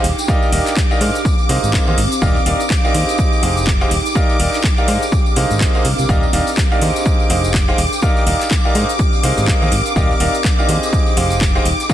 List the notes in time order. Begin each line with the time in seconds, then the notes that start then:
Already playing: G5 D6
0.04 D#1 D4, open hi-hat, shaker
0.18 tambourine, shaker
0.26 D#4 G4 A#4 D5 F5, kick, tambourine, shaker
0.42 tambourine
0.49 D#1 D#4 G4 A#4 D5 F5, open hi-hat
0.53 shaker
0.66 clap, tambourine, shaker
0.76 kick, clap, tambourine, shaker
0.91 D#4 G4 A#4 D5 F5, tambourine
1.01 G#2 C4 D#4 G#4 A#4 C5 F5, open hi-hat, shaker
1.15 tambourine, shaker
1.25 kick, tambourine, shaker
1.39 tambourine
1.49 C2 D#4 G#4 A#4 C5 F5, open hi-hat, high conga, shaker
1.56 A#4
1.63 G#1, tambourine, shaker
1.73 kick, clap, tambourine, shaker
1.87 D#2 D#4 G#4 A#4 C5 F5, tambourine
1.98 G#1, open hi-hat, shaker
2.12 tambourine, shaker
2.22 D#1 D4 D#4 G4 A#4 D5 F5, kick, tambourine, shaker
2.36 tambourine
2.46 D#1 D#4 G4 A#4 D5 F5, open hi-hat, shaker
2.58 G4, tambourine, shaker
2.70 kick, clap, tambourine, shaker
2.84 D#4 G4 A#4 D5 F5, tambourine
2.94 D#2 D#4 G4 G#4 C5 F5, open hi-hat, shaker
3.09 tambourine, shaker
3.18 D#4, kick, tambourine, shaker
3.33 tambourine
3.43 F1 D#4 G4 G#4 C5 F5, open hi-hat, high conga, shaker
3.52 G5
3.57 tambourine, shaker
3.66 kick, clap, tambourine, shaker
3.81 D#4 G4 G#4 C5 F5, tambourine
3.91 D#1 D4, open hi-hat, shaker
4.06 tambourine, shaker
4.15 D#4 G4 A#4 D5 F5, kick, tambourine, shaker
4.29 tambourine
4.36 G4 A#4 F5, open hi-hat
4.40 D#1 D#4 G4 D5, shaker
4.54 clap, tambourine, shaker
4.64 kick, clap, tambourine, shaker
4.78 D#4 G4 A#4 D5 F5, tambourine
4.88 G#2 C4 D#4 G#4 A#4 C5 F5, open hi-hat, shaker
5.02 tambourine, shaker
5.12 kick, tambourine, shaker
5.26 tambourine
5.36 C2 D#4 G#4 A#4 C5 F5, open hi-hat, high conga, shaker
5.44 A#4
5.51 G#1, tambourine, shaker
5.61 kick, clap, shaker
5.75 D#4 G#4 A#4 C5 F5, tambourine
5.84 C2, open hi-hat, high conga, shaker
5.98 C2, tambourine, shaker
6.09 D#1 D4 D#4 G4 A#4 D5 F5 D6, kick, tambourine, shaker
6.23 tambourine
6.33 D#1 D#4 G4 A#4 D5 F5, open hi-hat, shaker
6.47 tambourine, shaker
6.57 kick, clap, tambourine, shaker
6.71 D#4 G4 A#4 D5 F5, tambourine
6.82 D#2 D#4 G4 G#4 C5 F5, open hi-hat, shaker
6.96 tambourine, shaker
7.05 D#4, kick, tambourine, shaker
7.20 tambourine
7.30 F1 D#4 G4 G#4 C5 F5, open hi-hat, high conga, shaker
7.40 G5
7.44 tambourine, shaker
7.54 kick, clap, tambourine, shaker
7.68 D#4 G4 G#4 C5 F5, tambourine
7.78 D#1 D4, open hi-hat, shaker
7.93 tambourine, shaker
8.02 D#4 G4 A#4 D5 F5, kick, tambourine, shaker
8.17 F5, tambourine
8.23 D#1 D#4 G4 A#4 D5 F5, open hi-hat
8.27 shaker
8.41 clap, tambourine, shaker
8.51 kick, clap, tambourine, shaker
8.65 D#4 G4 A#4 D5 F5, tambourine
8.75 G#2 C4 D#4 G#4 A#4 C5 F5, open hi-hat, shaker
8.89 tambourine, shaker
8.99 kick, tambourine, shaker
9.13 tambourine
9.23 C2 D#4 G#4 A#4 C5 F5, open hi-hat, high conga, shaker
9.37 G#1, tambourine, shaker
9.48 kick, clap, tambourine, shaker
9.62 D#2 D#4 G#4 A#4 C5 F5, tambourine
9.72 G#1, open hi-hat, shaker
9.86 tambourine, shaker
9.96 D#1 D4 D#4 G4 A#4 D5 F5, kick, tambourine, shaker
10.11 tambourine
10.20 D#1 D#4 G4 A#4 D5 F5, open hi-hat, shaker
10.34 tambourine, shaker
10.44 kick, clap, tambourine, shaker
10.59 D#4 G4 A#4 D5 F5, tambourine
10.69 D#2 D#4 G4 G#4 C5 F5, open hi-hat, shaker
10.83 tambourine, shaker
10.93 D#4, kick, tambourine, shaker
11.06 tambourine
11.17 F1 D#4 G4 G#4 C5 F5, open hi-hat, high conga, shaker
11.27 G5, tambourine
11.31 shaker
11.41 kick, clap, shaker
11.55 D#4 G4 G#4 C5 F5, tambourine
11.65 D#1 D4, open hi-hat, shaker
11.80 G4, tambourine, shaker
11.89 D#4 G4 A#4 D5 F5, kick, tambourine, shaker